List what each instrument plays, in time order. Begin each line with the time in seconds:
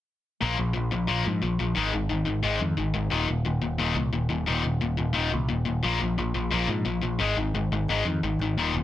0.41 picked electric bass A#1, distorted electric guitar A#2 F3 A#3
0.57 picked electric bass A#1, distorted electric guitar A#2 F3
0.73 picked electric bass A#1, distorted electric guitar A#2 F3
0.91 picked electric bass A#1, distorted electric guitar A#2 F3
1.07 picked electric bass A#1, distorted electric guitar A#2 F3 A#3
1.25 picked electric bass G#2, distorted electric guitar A#2 F3
1.42 picked electric bass A#1, distorted electric guitar A#2 F3
1.59 picked electric bass A#1, distorted electric guitar A#2 F3
1.75 picked electric bass G#1, distorted electric guitar G#2 D#3 G#3
1.92 picked electric bass G#1, distorted electric guitar G#2 D#3
2.09 picked electric bass G#1, distorted electric guitar G#2 D#3
2.25 picked electric bass G#1, distorted electric guitar G#2 D#3
2.43 picked electric bass G#1, distorted electric guitar G#2 D#3 G#3
2.59 picked electric bass F2, distorted electric guitar G#2 D#3
2.77 picked electric bass G#1, distorted electric guitar G#2 D#3
2.94 picked electric bass G#1, distorted electric guitar G#2 D#3
3.10 picked electric bass D#1, distorted electric guitar D#2 A#2 D#3
3.28 picked electric bass D#1, distorted electric guitar D#2 A#2
3.45 picked electric bass D#1, distorted electric guitar D#2 A#2
3.62 picked electric bass D#1, distorted electric guitar D#2 A#2
3.78 picked electric bass D#1, distorted electric guitar D#2 A#2 D#3
3.95 picked electric bass C2, distorted electric guitar D#2 A#2
4.13 picked electric bass D#1, distorted electric guitar D#2 A#2
4.29 picked electric bass D#1, distorted electric guitar D#2 A#2
4.46 picked electric bass D#1, distorted electric guitar D#2 A#2 D#3
4.63 picked electric bass D#1, distorted electric guitar D#2 A#2
4.81 picked electric bass D#1, distorted electric guitar D#2 A#2
4.97 picked electric bass D#1, distorted electric guitar D#2 A#2
5.13 picked electric bass D#1, distorted electric guitar D#2 A#2 D#3
5.31 picked electric bass C2, distorted electric guitar D#2 A#2
5.49 picked electric bass D#1, distorted electric guitar D#2 A#2
5.65 picked electric bass D#1, distorted electric guitar D#2 A#2
5.83 picked electric bass A#1, distorted electric guitar A#2 F3 A#3
6.00 picked electric bass A#1, distorted electric guitar A#2 F3
6.18 picked electric bass A#1, distorted electric guitar A#2 F3
6.34 picked electric bass A#1, distorted electric guitar A#2 F3
6.51 picked electric bass A#1, distorted electric guitar A#2 F3 A#3
6.68 picked electric bass G#2, distorted electric guitar A#2 F3
6.85 picked electric bass A#1, distorted electric guitar A#2 F3
7.02 picked electric bass A#1, distorted electric guitar A#2 F3
7.19 picked electric bass G#1, distorted electric guitar G#2 D#3 G#3
7.37 picked electric bass G#1, distorted electric guitar G#2 D#3
7.54 picked electric bass G#1, distorted electric guitar G#2 D#3
7.72 picked electric bass G#1, distorted electric guitar G#2 D#3
7.88 picked electric bass G#1, distorted electric guitar G#2 D#3 G#3
8.05 picked electric bass F2, distorted electric guitar G#2 D#3
8.23 picked electric bass G#1, distorted electric guitar G#2 D#3
8.39 picked electric bass G#1, distorted electric guitar G#2 D#3
8.57 picked electric bass D#1, distorted electric guitar D#2 A#2 D#3
8.74 picked electric bass D#1, distorted electric guitar D#2 A#2